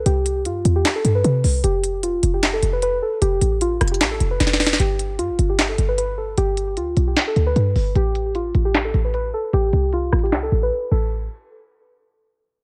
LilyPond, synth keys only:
\new Staff \with { instrumentName = "Synth keys" } { \time 4/4 \key a \minor \tempo 4 = 152 g'4 f'8. g'8 a'8 b'4~ b'16 | g'4 f'8. g'8 a'8 b'16 b'8 a'8 | g'4 f'8. g'8 a'8 b'4~ b'16 | g'4 f'8. g'8 a'8 b'16 b'8 a'8 |
g'4 f'8. g'8 a'8 b'4~ b'16 | g'4 f'8. g'8 a'8 b'16 b'8 a'8 | g'4 f'8. g'8 a'8 b'8. a'8 | r1 | }